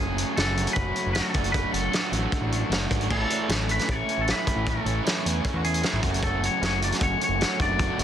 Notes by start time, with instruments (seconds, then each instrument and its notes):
Already playing: analog synth bass F#1, clean electric guitar G#4
0.00 overdriven electric guitar F#2 C#3 F#3 A3 C#4 F#4
0.18 overdriven electric guitar F#3 A3 C#4 F#4, closed hi-hat
0.36 analog synth bass F#1, overdriven electric guitar F#2 C#3 F#3 A3 C#4 F#4, clean electric guitar A4, snare, closed hi-hat
0.57 overdriven electric guitar F#3 A3 C#4 F#4, closed hi-hat
0.67 closed hi-hat
0.73 analog synth bass F#1, clean electric guitar B4, kick, closed hi-hat
0.96 distorted electric guitar A3 C#4 F#4, closed hi-hat
1.06 analog synth bass F#1
1.13 overdriven electric guitar F#3 A3 C#4, clean electric guitar A4, snare, closed hi-hat
1.17 overdriven electric guitar F#4
1.34 analog synth bass F#1, overdriven electric guitar F#3 A3 D4 F#4, kick, closed hi-hat
1.44 closed hi-hat
1.52 overdriven electric guitar F#3 A3 D4 F#4, clean electric guitar B4, kick, closed hi-hat
1.71 analog synth bass F#1, overdriven electric guitar A3 D4 F#4, clean electric guitar A4, closed hi-hat
1.92 overdriven electric guitar F#3 A3 D4 F#4, snare, closed hi-hat
2.12 analog synth bass A1, overdriven electric guitar A3 D4 F#4, closed hi-hat
2.32 kick, closed hi-hat
2.41 analog synth bass A1
2.51 distorted electric guitar A3 D4 F#4, closed hi-hat
2.69 analog synth bass F#1, overdriven electric guitar F#3 A3 D4 F#4, snare, closed hi-hat
2.90 analog synth bass G#1, overdriven electric guitar A3 D4 F#4, kick, closed hi-hat
3.01 closed hi-hat
3.09 analog synth bass A1, overdriven electric guitar A2 E3 A3 C#4 E4, analog synth pad A3 C#5 E5 C#6, clean electric guitar A4, kick, crash
3.29 overdriven electric guitar A3 C#4 E4, closed hi-hat
3.48 analog synth bass A1, overdriven electric guitar A2 E3 A3 C#4 E4, snare, closed hi-hat
3.68 overdriven electric guitar A3 C#4 E4, clean electric guitar B4, closed hi-hat
3.79 snare, closed hi-hat
3.88 analog synth bass A1, clean electric guitar C#5, kick, closed hi-hat
4.08 distorted electric guitar A3 C#4 E4, closed hi-hat
4.18 analog synth bass A1, clean electric guitar A4
4.27 distorted electric guitar A2, overdriven electric guitar E3 A3 C#4 E4, snare, closed hi-hat
4.31 clean electric guitar B4
4.47 overdriven electric guitar A3 C#4 E4, kick, closed hi-hat
4.56 analog synth bass A1
4.66 overdriven electric guitar A2 E3 A3 C#4 E4, clean electric guitar A4, kick, closed hi-hat
4.85 analog synth bass A1, overdriven electric guitar A3 C#4 E4, closed hi-hat
5.03 overdriven electric guitar A2 E3 A3 C#4 E4, closed hi-hat
5.07 snare
5.24 analog synth bass E2, overdriven electric guitar A3 C#4 E4, closed hi-hat
5.45 kick, closed hi-hat
5.54 analog synth bass E2, clean electric guitar F#4
5.63 distorted electric guitar A3 C#4 E4, clean electric guitar G#4, closed hi-hat
5.74 closed hi-hat
5.82 distorted electric guitar A2, overdriven electric guitar E3 A3 C#4 E4, snare, closed hi-hat
5.93 analog synth bass G#1
6.02 analog synth bass F#1, overdriven electric guitar F#2 C#3 F#3 A3 C#4 F#4, analog synth pad F#5 G#5, kick, closed hi-hat
6.14 closed hi-hat
6.22 overdriven electric guitar F#2 C#3 F#3 A3 C#4 F#4, clean electric guitar A4, kick, closed hi-hat
6.43 overdriven electric guitar F#3 A3 C#4 F#4, clean electric guitar C#5, closed hi-hat
6.62 analog synth bass F#1, overdriven electric guitar F#2 C#3 F#3 A3 C#4 F#4, snare, closed hi-hat
6.66 clean electric guitar C#5
6.81 overdriven electric guitar F#3 A3 C#4 F#4, clean electric guitar D5, closed hi-hat
6.92 snare, closed hi-hat
7.01 analog synth bass F#1, clean electric guitar C#5, kick, closed hi-hat
7.18 distorted electric guitar A3 C#4 F#4, closed hi-hat
7.24 clean electric guitar C#5
7.29 analog synth bass F#1
7.40 overdriven electric guitar F#3 A3 C#4 F#4, snare, closed hi-hat
7.59 analog synth bass F#1, overdriven electric guitar F#3 A3 D4 F#4, analog synth pad D5 D6, clean electric guitar D5, kick, closed hi-hat
7.79 overdriven electric guitar F#3 A3 D4 F#4, kick, closed hi-hat
7.98 analog synth bass F#1, distorted electric guitar A3 D4, overdriven electric guitar F#4, closed hi-hat